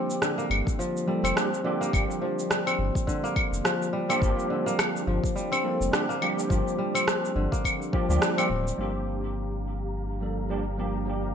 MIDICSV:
0, 0, Header, 1, 6, 480
1, 0, Start_track
1, 0, Key_signature, -2, "minor"
1, 0, Tempo, 571429
1, 1624, Time_signature, 4, 2, 24, 8
1, 9531, End_track
2, 0, Start_track
2, 0, Title_t, "String section"
2, 0, Program_c, 0, 48
2, 7379, Note_on_c, 0, 67, 69
2, 7381, Note_on_c, 0, 82, 69
2, 7383, Note_on_c, 0, 77, 60
2, 9531, Note_off_c, 0, 67, 0
2, 9531, Note_off_c, 0, 77, 0
2, 9531, Note_off_c, 0, 82, 0
2, 9531, End_track
3, 0, Start_track
3, 0, Title_t, "Tine electric piano"
3, 0, Program_c, 1, 4
3, 0, Note_on_c, 1, 53, 90
3, 0, Note_on_c, 1, 55, 81
3, 0, Note_on_c, 1, 58, 82
3, 0, Note_on_c, 1, 62, 79
3, 0, Note_on_c, 1, 67, 98
3, 870, Note_off_c, 1, 53, 0
3, 874, Note_off_c, 1, 55, 0
3, 878, Note_off_c, 1, 58, 0
3, 883, Note_off_c, 1, 62, 0
3, 886, Note_off_c, 1, 67, 0
3, 893, Note_on_c, 1, 53, 67
3, 900, Note_on_c, 1, 55, 64
3, 902, Note_on_c, 1, 58, 62
3, 907, Note_on_c, 1, 62, 61
3, 911, Note_on_c, 1, 69, 76
3, 1114, Note_off_c, 1, 53, 0
3, 1117, Note_off_c, 1, 55, 0
3, 1118, Note_off_c, 1, 58, 0
3, 1120, Note_off_c, 1, 62, 0
3, 1123, Note_off_c, 1, 69, 0
3, 1135, Note_on_c, 1, 53, 89
3, 1138, Note_on_c, 1, 55, 85
3, 1141, Note_on_c, 1, 58, 77
3, 1147, Note_on_c, 1, 62, 86
3, 1151, Note_on_c, 1, 67, 98
3, 1238, Note_off_c, 1, 53, 0
3, 1240, Note_off_c, 1, 55, 0
3, 1241, Note_off_c, 1, 58, 0
3, 1244, Note_off_c, 1, 62, 0
3, 1246, Note_off_c, 1, 67, 0
3, 1374, Note_on_c, 1, 53, 95
3, 1381, Note_on_c, 1, 55, 84
3, 1384, Note_on_c, 1, 58, 79
3, 1389, Note_on_c, 1, 62, 79
3, 1392, Note_on_c, 1, 67, 99
3, 1594, Note_off_c, 1, 53, 0
3, 1597, Note_off_c, 1, 55, 0
3, 1599, Note_off_c, 1, 58, 0
3, 1601, Note_off_c, 1, 62, 0
3, 1603, Note_off_c, 1, 67, 0
3, 1607, Note_on_c, 1, 53, 77
3, 1617, Note_on_c, 1, 55, 69
3, 1623, Note_on_c, 1, 58, 66
3, 1633, Note_on_c, 1, 62, 67
3, 1640, Note_on_c, 1, 67, 80
3, 3399, Note_off_c, 1, 53, 0
3, 3404, Note_off_c, 1, 55, 0
3, 3408, Note_off_c, 1, 58, 0
3, 3412, Note_off_c, 1, 62, 0
3, 3416, Note_off_c, 1, 67, 0
3, 3430, Note_on_c, 1, 53, 94
3, 3435, Note_on_c, 1, 55, 86
3, 3439, Note_on_c, 1, 58, 90
3, 3443, Note_on_c, 1, 62, 86
3, 3449, Note_on_c, 1, 67, 106
3, 3514, Note_off_c, 1, 53, 0
3, 3516, Note_off_c, 1, 55, 0
3, 3518, Note_off_c, 1, 58, 0
3, 3520, Note_off_c, 1, 62, 0
3, 3523, Note_off_c, 1, 67, 0
3, 3524, Note_on_c, 1, 53, 97
3, 3533, Note_on_c, 1, 55, 86
3, 3541, Note_on_c, 1, 58, 87
3, 3549, Note_on_c, 1, 62, 84
3, 3558, Note_on_c, 1, 67, 97
3, 4709, Note_off_c, 1, 53, 0
3, 4714, Note_off_c, 1, 55, 0
3, 4718, Note_off_c, 1, 58, 0
3, 4722, Note_off_c, 1, 62, 0
3, 4726, Note_off_c, 1, 67, 0
3, 4729, Note_on_c, 1, 53, 75
3, 4734, Note_on_c, 1, 55, 65
3, 4740, Note_on_c, 1, 58, 67
3, 4742, Note_on_c, 1, 62, 64
3, 4746, Note_on_c, 1, 69, 80
3, 4951, Note_off_c, 1, 53, 0
3, 4954, Note_off_c, 1, 55, 0
3, 4957, Note_off_c, 1, 58, 0
3, 4958, Note_off_c, 1, 62, 0
3, 4960, Note_off_c, 1, 69, 0
3, 4969, Note_on_c, 1, 53, 91
3, 4973, Note_on_c, 1, 55, 80
3, 4978, Note_on_c, 1, 58, 81
3, 4982, Note_on_c, 1, 62, 87
3, 4985, Note_on_c, 1, 67, 100
3, 5075, Note_off_c, 1, 53, 0
3, 5077, Note_off_c, 1, 55, 0
3, 5080, Note_off_c, 1, 58, 0
3, 5082, Note_off_c, 1, 62, 0
3, 5083, Note_off_c, 1, 67, 0
3, 5211, Note_on_c, 1, 53, 92
3, 5215, Note_on_c, 1, 55, 85
3, 5220, Note_on_c, 1, 58, 80
3, 5224, Note_on_c, 1, 62, 87
3, 5228, Note_on_c, 1, 67, 105
3, 5432, Note_off_c, 1, 53, 0
3, 5435, Note_off_c, 1, 55, 0
3, 5437, Note_off_c, 1, 58, 0
3, 5439, Note_off_c, 1, 62, 0
3, 5441, Note_off_c, 1, 67, 0
3, 5445, Note_on_c, 1, 53, 77
3, 5454, Note_on_c, 1, 55, 71
3, 5463, Note_on_c, 1, 58, 70
3, 5471, Note_on_c, 1, 62, 67
3, 5480, Note_on_c, 1, 67, 82
3, 6634, Note_off_c, 1, 53, 0
3, 6638, Note_off_c, 1, 55, 0
3, 6643, Note_off_c, 1, 58, 0
3, 6647, Note_off_c, 1, 62, 0
3, 6651, Note_off_c, 1, 67, 0
3, 6654, Note_on_c, 1, 53, 91
3, 6658, Note_on_c, 1, 55, 81
3, 6663, Note_on_c, 1, 58, 83
3, 6666, Note_on_c, 1, 62, 87
3, 6669, Note_on_c, 1, 67, 98
3, 6758, Note_off_c, 1, 53, 0
3, 6760, Note_off_c, 1, 55, 0
3, 6762, Note_off_c, 1, 58, 0
3, 6764, Note_off_c, 1, 62, 0
3, 6765, Note_off_c, 1, 67, 0
3, 6788, Note_on_c, 1, 53, 96
3, 6793, Note_on_c, 1, 55, 82
3, 6798, Note_on_c, 1, 58, 84
3, 6802, Note_on_c, 1, 62, 81
3, 6805, Note_on_c, 1, 67, 104
3, 7001, Note_off_c, 1, 53, 0
3, 7004, Note_off_c, 1, 55, 0
3, 7006, Note_off_c, 1, 58, 0
3, 7008, Note_off_c, 1, 62, 0
3, 7010, Note_off_c, 1, 67, 0
3, 7029, Note_on_c, 1, 53, 76
3, 7033, Note_on_c, 1, 55, 73
3, 7037, Note_on_c, 1, 58, 70
3, 7043, Note_on_c, 1, 62, 74
3, 7046, Note_on_c, 1, 67, 88
3, 7109, Note_off_c, 1, 53, 0
3, 7111, Note_off_c, 1, 55, 0
3, 7113, Note_off_c, 1, 58, 0
3, 7116, Note_off_c, 1, 62, 0
3, 7118, Note_off_c, 1, 67, 0
3, 7363, Note_on_c, 1, 53, 77
3, 7371, Note_on_c, 1, 55, 76
3, 7378, Note_on_c, 1, 58, 75
3, 7388, Note_on_c, 1, 62, 74
3, 7397, Note_on_c, 1, 67, 87
3, 8548, Note_off_c, 1, 53, 0
3, 8553, Note_off_c, 1, 55, 0
3, 8556, Note_off_c, 1, 58, 0
3, 8561, Note_off_c, 1, 62, 0
3, 8565, Note_off_c, 1, 67, 0
3, 8574, Note_on_c, 1, 53, 63
3, 8578, Note_on_c, 1, 55, 57
3, 8582, Note_on_c, 1, 58, 56
3, 8589, Note_on_c, 1, 62, 57
3, 8591, Note_on_c, 1, 69, 67
3, 8794, Note_off_c, 1, 53, 0
3, 8796, Note_off_c, 1, 55, 0
3, 8798, Note_off_c, 1, 58, 0
3, 8801, Note_off_c, 1, 62, 0
3, 8803, Note_off_c, 1, 69, 0
3, 8813, Note_on_c, 1, 53, 76
3, 8818, Note_on_c, 1, 55, 71
3, 8822, Note_on_c, 1, 58, 74
3, 8825, Note_on_c, 1, 62, 77
3, 8830, Note_on_c, 1, 67, 86
3, 8917, Note_off_c, 1, 53, 0
3, 8920, Note_off_c, 1, 55, 0
3, 8922, Note_off_c, 1, 58, 0
3, 8923, Note_off_c, 1, 62, 0
3, 8926, Note_off_c, 1, 67, 0
3, 9053, Note_on_c, 1, 53, 77
3, 9057, Note_on_c, 1, 55, 71
3, 9062, Note_on_c, 1, 58, 77
3, 9066, Note_on_c, 1, 62, 73
3, 9069, Note_on_c, 1, 67, 83
3, 9273, Note_off_c, 1, 53, 0
3, 9276, Note_off_c, 1, 55, 0
3, 9278, Note_off_c, 1, 58, 0
3, 9280, Note_off_c, 1, 62, 0
3, 9281, Note_off_c, 1, 67, 0
3, 9285, Note_on_c, 1, 53, 66
3, 9294, Note_on_c, 1, 55, 59
3, 9303, Note_on_c, 1, 58, 58
3, 9308, Note_on_c, 1, 62, 60
3, 9319, Note_on_c, 1, 67, 71
3, 9531, Note_off_c, 1, 53, 0
3, 9531, Note_off_c, 1, 55, 0
3, 9531, Note_off_c, 1, 58, 0
3, 9531, Note_off_c, 1, 62, 0
3, 9531, Note_off_c, 1, 67, 0
3, 9531, End_track
4, 0, Start_track
4, 0, Title_t, "Kora"
4, 0, Program_c, 2, 46
4, 0, Note_on_c, 2, 50, 66
4, 0, Note_on_c, 2, 55, 79
4, 0, Note_on_c, 2, 58, 72
4, 0, Note_on_c, 2, 60, 90
4, 0, Note_on_c, 2, 65, 75
4, 0, Note_on_c, 2, 67, 74
4, 172, Note_off_c, 2, 50, 0
4, 182, Note_on_c, 2, 50, 78
4, 225, Note_off_c, 2, 55, 0
4, 314, Note_off_c, 2, 58, 0
4, 317, Note_on_c, 2, 58, 93
4, 495, Note_off_c, 2, 65, 0
4, 663, Note_on_c, 2, 53, 83
4, 786, Note_off_c, 2, 67, 0
4, 903, Note_on_c, 2, 55, 71
4, 1037, Note_off_c, 2, 60, 0
4, 1040, Note_on_c, 2, 60, 99
4, 1371, Note_off_c, 2, 50, 0
4, 1381, Note_on_c, 2, 50, 77
4, 1425, Note_off_c, 2, 53, 0
4, 1425, Note_off_c, 2, 55, 0
4, 1516, Note_off_c, 2, 58, 0
4, 1519, Note_on_c, 2, 58, 98
4, 1862, Note_on_c, 2, 53, 72
4, 2101, Note_on_c, 2, 55, 78
4, 2235, Note_off_c, 2, 60, 0
4, 2239, Note_on_c, 2, 60, 93
4, 2570, Note_off_c, 2, 50, 0
4, 2580, Note_on_c, 2, 50, 84
4, 2625, Note_off_c, 2, 53, 0
4, 2625, Note_off_c, 2, 55, 0
4, 2715, Note_off_c, 2, 58, 0
4, 2719, Note_on_c, 2, 58, 101
4, 3061, Note_on_c, 2, 53, 84
4, 3300, Note_on_c, 2, 55, 82
4, 3435, Note_off_c, 2, 60, 0
4, 3438, Note_on_c, 2, 60, 101
4, 3770, Note_off_c, 2, 50, 0
4, 3781, Note_on_c, 2, 50, 71
4, 3825, Note_off_c, 2, 53, 0
4, 3825, Note_off_c, 2, 55, 0
4, 3913, Note_off_c, 2, 58, 0
4, 3916, Note_on_c, 2, 58, 104
4, 4260, Note_on_c, 2, 53, 69
4, 4499, Note_on_c, 2, 55, 86
4, 4631, Note_off_c, 2, 60, 0
4, 4634, Note_on_c, 2, 60, 99
4, 4970, Note_off_c, 2, 50, 0
4, 4980, Note_on_c, 2, 50, 76
4, 5025, Note_off_c, 2, 53, 0
4, 5025, Note_off_c, 2, 55, 0
4, 5112, Note_off_c, 2, 58, 0
4, 5115, Note_on_c, 2, 58, 96
4, 5458, Note_on_c, 2, 53, 79
4, 5699, Note_on_c, 2, 55, 74
4, 5831, Note_off_c, 2, 60, 0
4, 5834, Note_on_c, 2, 60, 97
4, 6171, Note_off_c, 2, 50, 0
4, 6181, Note_on_c, 2, 50, 70
4, 6225, Note_off_c, 2, 53, 0
4, 6225, Note_off_c, 2, 55, 0
4, 6313, Note_off_c, 2, 58, 0
4, 6316, Note_on_c, 2, 58, 99
4, 6660, Note_on_c, 2, 53, 80
4, 6899, Note_on_c, 2, 55, 83
4, 7034, Note_off_c, 2, 60, 0
4, 7037, Note_on_c, 2, 60, 100
4, 7425, Note_off_c, 2, 50, 0
4, 7425, Note_off_c, 2, 53, 0
4, 7425, Note_off_c, 2, 55, 0
4, 7936, Note_off_c, 2, 58, 0
4, 8549, Note_off_c, 2, 60, 0
4, 9531, End_track
5, 0, Start_track
5, 0, Title_t, "Sub bass"
5, 0, Program_c, 3, 38
5, 420, Note_on_c, 3, 31, 88
5, 522, Note_off_c, 3, 31, 0
5, 1036, Note_on_c, 3, 29, 87
5, 1114, Note_off_c, 3, 29, 0
5, 1624, Note_on_c, 3, 31, 98
5, 1724, Note_off_c, 3, 31, 0
5, 2340, Note_on_c, 3, 31, 88
5, 2442, Note_off_c, 3, 31, 0
5, 2955, Note_on_c, 3, 29, 82
5, 3033, Note_off_c, 3, 29, 0
5, 3540, Note_on_c, 3, 31, 96
5, 3642, Note_off_c, 3, 31, 0
5, 4260, Note_on_c, 3, 31, 93
5, 4363, Note_off_c, 3, 31, 0
5, 4876, Note_on_c, 3, 29, 84
5, 4954, Note_off_c, 3, 29, 0
5, 5460, Note_on_c, 3, 31, 101
5, 5562, Note_off_c, 3, 31, 0
5, 6178, Note_on_c, 3, 31, 92
5, 6281, Note_off_c, 3, 31, 0
5, 6795, Note_on_c, 3, 38, 77
5, 6874, Note_off_c, 3, 38, 0
5, 7137, Note_on_c, 3, 26, 89
5, 7325, Note_off_c, 3, 26, 0
5, 7379, Note_on_c, 3, 31, 84
5, 9531, Note_off_c, 3, 31, 0
5, 9531, End_track
6, 0, Start_track
6, 0, Title_t, "Drums"
6, 86, Note_on_c, 9, 69, 63
6, 170, Note_off_c, 9, 69, 0
6, 184, Note_on_c, 9, 37, 90
6, 190, Note_on_c, 9, 69, 57
6, 268, Note_off_c, 9, 37, 0
6, 274, Note_off_c, 9, 69, 0
6, 328, Note_on_c, 9, 69, 32
6, 412, Note_off_c, 9, 69, 0
6, 427, Note_on_c, 9, 75, 76
6, 511, Note_off_c, 9, 75, 0
6, 561, Note_on_c, 9, 36, 100
6, 571, Note_on_c, 9, 69, 59
6, 645, Note_off_c, 9, 36, 0
6, 655, Note_off_c, 9, 69, 0
6, 674, Note_on_c, 9, 69, 55
6, 758, Note_off_c, 9, 69, 0
6, 812, Note_on_c, 9, 69, 34
6, 896, Note_off_c, 9, 69, 0
6, 1047, Note_on_c, 9, 75, 74
6, 1054, Note_on_c, 9, 69, 62
6, 1131, Note_off_c, 9, 75, 0
6, 1138, Note_off_c, 9, 69, 0
6, 1149, Note_on_c, 9, 37, 96
6, 1155, Note_on_c, 9, 69, 55
6, 1233, Note_off_c, 9, 37, 0
6, 1239, Note_off_c, 9, 69, 0
6, 1293, Note_on_c, 9, 69, 34
6, 1377, Note_off_c, 9, 69, 0
6, 1533, Note_on_c, 9, 69, 66
6, 1617, Note_off_c, 9, 69, 0
6, 1624, Note_on_c, 9, 36, 113
6, 1629, Note_on_c, 9, 75, 72
6, 1635, Note_on_c, 9, 69, 52
6, 1708, Note_off_c, 9, 36, 0
6, 1713, Note_off_c, 9, 75, 0
6, 1719, Note_off_c, 9, 69, 0
6, 1771, Note_on_c, 9, 69, 31
6, 1855, Note_off_c, 9, 69, 0
6, 2009, Note_on_c, 9, 69, 63
6, 2093, Note_off_c, 9, 69, 0
6, 2106, Note_on_c, 9, 37, 96
6, 2112, Note_on_c, 9, 69, 56
6, 2190, Note_off_c, 9, 37, 0
6, 2196, Note_off_c, 9, 69, 0
6, 2244, Note_on_c, 9, 75, 79
6, 2250, Note_on_c, 9, 69, 31
6, 2328, Note_off_c, 9, 75, 0
6, 2334, Note_off_c, 9, 69, 0
6, 2480, Note_on_c, 9, 36, 97
6, 2489, Note_on_c, 9, 69, 57
6, 2564, Note_off_c, 9, 36, 0
6, 2573, Note_off_c, 9, 69, 0
6, 2583, Note_on_c, 9, 36, 60
6, 2594, Note_on_c, 9, 69, 54
6, 2667, Note_off_c, 9, 36, 0
6, 2678, Note_off_c, 9, 69, 0
6, 2729, Note_on_c, 9, 69, 33
6, 2813, Note_off_c, 9, 69, 0
6, 2823, Note_on_c, 9, 36, 101
6, 2824, Note_on_c, 9, 75, 76
6, 2907, Note_off_c, 9, 36, 0
6, 2908, Note_off_c, 9, 75, 0
6, 2970, Note_on_c, 9, 69, 58
6, 3054, Note_off_c, 9, 69, 0
6, 3066, Note_on_c, 9, 37, 96
6, 3072, Note_on_c, 9, 69, 50
6, 3150, Note_off_c, 9, 37, 0
6, 3156, Note_off_c, 9, 69, 0
6, 3211, Note_on_c, 9, 69, 35
6, 3295, Note_off_c, 9, 69, 0
6, 3443, Note_on_c, 9, 75, 80
6, 3450, Note_on_c, 9, 69, 63
6, 3527, Note_off_c, 9, 75, 0
6, 3534, Note_off_c, 9, 69, 0
6, 3542, Note_on_c, 9, 36, 116
6, 3552, Note_on_c, 9, 69, 50
6, 3626, Note_off_c, 9, 36, 0
6, 3636, Note_off_c, 9, 69, 0
6, 3690, Note_on_c, 9, 69, 30
6, 3774, Note_off_c, 9, 69, 0
6, 3929, Note_on_c, 9, 69, 61
6, 4013, Note_off_c, 9, 69, 0
6, 4023, Note_on_c, 9, 37, 96
6, 4023, Note_on_c, 9, 75, 81
6, 4029, Note_on_c, 9, 69, 52
6, 4107, Note_off_c, 9, 37, 0
6, 4107, Note_off_c, 9, 75, 0
6, 4113, Note_off_c, 9, 69, 0
6, 4169, Note_on_c, 9, 69, 32
6, 4253, Note_off_c, 9, 69, 0
6, 4398, Note_on_c, 9, 36, 92
6, 4409, Note_on_c, 9, 69, 59
6, 4482, Note_off_c, 9, 36, 0
6, 4493, Note_off_c, 9, 69, 0
6, 4512, Note_on_c, 9, 69, 54
6, 4596, Note_off_c, 9, 69, 0
6, 4642, Note_on_c, 9, 75, 81
6, 4648, Note_on_c, 9, 69, 34
6, 4726, Note_off_c, 9, 75, 0
6, 4732, Note_off_c, 9, 69, 0
6, 4886, Note_on_c, 9, 69, 56
6, 4970, Note_off_c, 9, 69, 0
6, 4984, Note_on_c, 9, 37, 102
6, 4990, Note_on_c, 9, 69, 53
6, 5068, Note_off_c, 9, 37, 0
6, 5074, Note_off_c, 9, 69, 0
6, 5128, Note_on_c, 9, 69, 31
6, 5212, Note_off_c, 9, 69, 0
6, 5225, Note_on_c, 9, 75, 76
6, 5309, Note_off_c, 9, 75, 0
6, 5368, Note_on_c, 9, 69, 63
6, 5452, Note_off_c, 9, 69, 0
6, 5461, Note_on_c, 9, 36, 113
6, 5469, Note_on_c, 9, 69, 52
6, 5545, Note_off_c, 9, 36, 0
6, 5553, Note_off_c, 9, 69, 0
6, 5609, Note_on_c, 9, 69, 30
6, 5693, Note_off_c, 9, 69, 0
6, 5841, Note_on_c, 9, 75, 82
6, 5847, Note_on_c, 9, 69, 66
6, 5925, Note_off_c, 9, 75, 0
6, 5931, Note_off_c, 9, 69, 0
6, 5944, Note_on_c, 9, 37, 106
6, 5950, Note_on_c, 9, 69, 57
6, 6028, Note_off_c, 9, 37, 0
6, 6034, Note_off_c, 9, 69, 0
6, 6089, Note_on_c, 9, 69, 30
6, 6173, Note_off_c, 9, 69, 0
6, 6319, Note_on_c, 9, 36, 96
6, 6327, Note_on_c, 9, 69, 61
6, 6403, Note_off_c, 9, 36, 0
6, 6411, Note_off_c, 9, 69, 0
6, 6422, Note_on_c, 9, 36, 56
6, 6427, Note_on_c, 9, 75, 86
6, 6434, Note_on_c, 9, 69, 52
6, 6506, Note_off_c, 9, 36, 0
6, 6511, Note_off_c, 9, 75, 0
6, 6518, Note_off_c, 9, 69, 0
6, 6569, Note_on_c, 9, 69, 30
6, 6653, Note_off_c, 9, 69, 0
6, 6663, Note_on_c, 9, 36, 109
6, 6747, Note_off_c, 9, 36, 0
6, 6807, Note_on_c, 9, 69, 60
6, 6891, Note_off_c, 9, 69, 0
6, 6904, Note_on_c, 9, 37, 101
6, 6910, Note_on_c, 9, 69, 55
6, 6988, Note_off_c, 9, 37, 0
6, 6994, Note_off_c, 9, 69, 0
6, 7041, Note_on_c, 9, 75, 90
6, 7048, Note_on_c, 9, 69, 33
6, 7125, Note_off_c, 9, 75, 0
6, 7132, Note_off_c, 9, 69, 0
6, 7288, Note_on_c, 9, 69, 63
6, 7372, Note_off_c, 9, 69, 0
6, 9531, End_track
0, 0, End_of_file